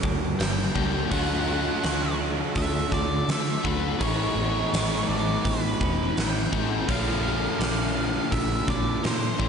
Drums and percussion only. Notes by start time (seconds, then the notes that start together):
0.03 kick
0.40 snare, open hi-hat
0.76 kick
1.11 kick, open hi-hat
1.83 snare, open hi-hat
2.55 kick, open hi-hat
2.92 kick, snare
3.29 snare, open hi-hat
3.65 kick
4.01 kick, open hi-hat
4.74 snare, open hi-hat
5.45 kick, open hi-hat
5.81 kick
6.17 snare, open hi-hat
6.53 kick
6.89 kick, open hi-hat
7.61 snare, open hi-hat
8.32 kick, open hi-hat
8.68 kick, snare
9.04 snare, open hi-hat
9.40 kick